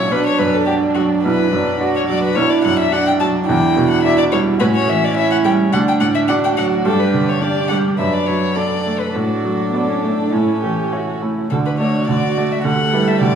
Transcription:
Already playing: A#1 A#2 F#3 F#4 C#5 E5
0.11 B1 D4 B4
0.26 C#5
0.39 F#2 B4
0.54 A4
0.66 F#4 G4 D5
0.95 F#3 F#4
1.24 B1 E4 B4
1.53 F#2 D4
1.81 F#4 D5
1.96 C#5
2.09 F#3 D5
2.23 B4
2.35 B1 E4 C#5
2.50 D5
2.64 F#2 F#5
2.79 E5
2.92 D4 F#4 D5 F#5
3.07 G5
3.20 F#3 A5
3.46 E2 E4 G5
3.76 B2
3.90 F#5
4.03 E4 D5 E5
4.18 D5
4.32 G3 C#5
4.60 A2 C#4 F#4 B4
4.76 C#5
4.88 E3 E5
5.05 D5
5.16 E4 C#5 E5
5.31 F#5
5.45 G3 G5
5.72 D2 D4 F#5
5.88 G5
6.00 A2 F#5
6.15 E5
6.28 D4 F#4 D5 F#5
6.44 G5
6.57 F#3 F#5
6.85 G2 D4 G4 A4
7.00 B4
7.14 D3
7.29 C#5
7.41 D4 G4 D5
7.69 G3 F#5
7.98 F#2 D4 B4 E5
8.14 D5
8.26 F#3 C#5
8.55 D4 A4 D5
8.86 A3
8.99 B4
9.13 A2 D4 F#4 A4
9.44 F#3
9.72 B3 F#4 D5
9.88 C#4
10.04 A3
10.19 D4
10.32 A2 C#4 E4
10.62 E3 G4
10.92 E4 F#4 C#5
11.22 A3 E4
11.50 D2 D3 D4 F#4 A4
11.66 B4
11.78 A3 F#4 C#5 D5
12.08 D2 D3 F#4 D5
12.37 A3 F#4 D5
12.52 E5
12.64 D2 D3 G4 A4 F#5
12.93 G3 E4 B4
13.08 E5
13.21 D2 D3 G4 D5

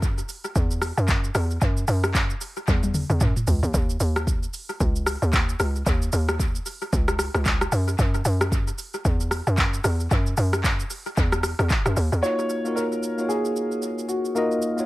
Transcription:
Already playing: F#2
0.02 kick, shaker
0.18 shaker
0.29 open hi-hat, shaker
0.44 shaker
0.55 E2, kick, shaker
0.71 shaker
0.82 cross-stick, open hi-hat, shaker
0.97 F#2, shaker
1.08 kick, clap, shaker
1.24 shaker
1.35 E2, cross-stick, open hi-hat, shaker
1.51 shaker
1.62 F#2, kick, shaker
1.77 shaker
1.88 F#2, open hi-hat, shaker
2.04 cross-stick, shaker
2.14 kick, clap, shaker
2.30 shaker
2.41 open hi-hat, shaker
2.56 shaker
2.68 E2, kick, high tom, shaker
2.83 high tom, shaker
2.94 open hi-hat, mid tom, shaker
3.10 E2, mid tom, shaker
3.20 F#2, kick, mid tom, shaker
3.36 mid tom, shaker
3.47 C#2, floor tom, open hi-hat, shaker
3.63 D#2, floor tom, shaker
3.74 D#2, kick, shaker
3.90 shaker
4.00 D#2, open hi-hat, shaker
4.16 cross-stick, shaker
4.27 kick, shaker
4.43 shaker
4.54 open hi-hat, shaker
4.69 shaker
4.80 C#2, kick, shaker
4.96 shaker
5.06 cross-stick, open hi-hat, shaker
5.22 D#2, shaker
5.33 kick, clap, shaker
5.49 shaker
5.60 C#2, cross-stick, open hi-hat, shaker
5.76 shaker
5.86 D#2, kick, shaker
6.02 shaker
6.13 D#2, open hi-hat, shaker
6.29 cross-stick, shaker
6.39 kick, shaker
6.55 shaker
6.66 open hi-hat, shaker
6.81 shaker
6.93 C#2, kick, shaker
7.08 cross-stick, shaker
7.19 cross-stick, open hi-hat, shaker
7.34 C#2, cross-stick, shaker
7.45 kick, clap, shaker
7.61 cross-stick, shaker
7.72 F#2, open hi-hat, shaker
7.88 shaker
7.99 F#2, kick, shaker
8.14 shaker
8.25 F#2, open hi-hat, shaker
8.41 cross-stick, shaker
8.52 kick, shaker
8.68 shaker
8.78 open hi-hat, shaker
8.94 shaker
9.05 E2, kick, shaker
9.20 shaker
9.31 cross-stick, open hi-hat, shaker
9.47 F#2, shaker
9.57 kick, clap, shaker
9.74 shaker
9.84 E2, cross-stick, open hi-hat, shaker
10.00 shaker
10.11 F#2, kick, shaker
10.26 shaker
10.37 F#2, open hi-hat, shaker
10.53 cross-stick, shaker
10.64 kick, clap, shaker
10.80 shaker
10.90 open hi-hat, shaker
11.06 shaker
11.17 E2, kick, shaker
11.32 cross-stick, shaker
11.43 cross-stick, open hi-hat, shaker
11.59 E2, cross-stick, shaker
11.70 kick, clap, shaker
11.86 F#2, cross-stick, shaker
11.97 D#2, open hi-hat, shaker
12.12 E2, shaker
12.23 A#3 D#4 F4 F#4 C#5, shaker
12.39 shaker
12.49 shaker
12.64 A#3 D#4 F4 F#4 A#4, shaker
12.76 A#4, shaker
12.92 shaker
13.03 shaker
13.18 A#3 D#4 F4 F#4 C#5, shaker
13.29 G#4, shaker
13.45 shaker
13.56 shaker
13.72 shaker
13.82 shaker
13.98 shaker
14.08 F#4, shaker
14.25 shaker
14.35 A#3 D#4 F4 F#4 A#4 D#5, shaker
14.51 shaker
14.62 shaker
14.77 A#3 D#4 F4 F#4 C#5, shaker

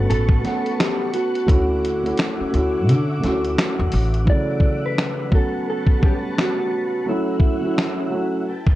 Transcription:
Already playing: A3 B3 C#4 F#4 B4 F#5 A5 C#6
0.10 A1 A4, closed hi-hat
0.29 kick
0.41 A3 B3 C#4, snare, closed hi-hat
0.47 F#5
0.66 closed hi-hat
0.80 G4, finger snap, snare, closed hi-hat
1.13 F#4, closed hi-hat
1.35 closed hi-hat
1.46 D2 A3 C#4 E4 E5 D6, kick, closed hi-hat
1.51 F#4
1.85 closed hi-hat
2.03 A3 C#4 E4, closed hi-hat
2.08 F#4
2.17 finger snap, snare, closed hi-hat
2.40 muted upright bass stroke
2.52 D2 A3 C#4 E4, closed hi-hat
2.57 F#4
2.89 D3, closed hi-hat
3.21 D2 A3 C#4 E4, snare, closed hi-hat
3.26 F#4
3.45 closed hi-hat
3.58 finger snap, snare, closed hi-hat
3.79 E2
3.92 A1, open hi-hat
4.14 closed hi-hat
4.25 E3 F#3 A3 D5 E5 F#5 D6, kick
4.30 C#3 D5
4.60 kick
4.86 B4
4.98 finger snap, snare
5.30 F#3 A3 B3 B4 F#5 A5 C#6, kick
5.35 C#4 A4
5.70 A4
5.87 kick
5.99 G3 A3 B3, kick
6.05 C#4 G4
6.38 F#4, finger snap, snare
7.06 F#3 A3 C#4 E4 E5 F#5
7.11 E4
7.40 kick
7.60 F#3 A3 C#4
7.65 E4
7.78 finger snap, snare
8.10 F#3 A3 C#4
8.14 F#4
8.46 E4 B4 G5 A5
8.66 kick

